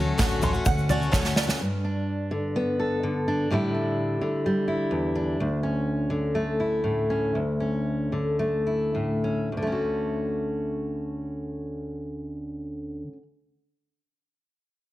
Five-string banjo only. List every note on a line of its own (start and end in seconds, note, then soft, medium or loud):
0.00 0.67 C#5 medium
0.00 0.43 D5 medium
0.20 0.65 F#5 medium
0.43 1.37 C6 medium
0.66 1.61 F#5 loud
0.90 1.12 D5 medium
1.12 1.60 C#5 medium
1.37 1.61 D5 medium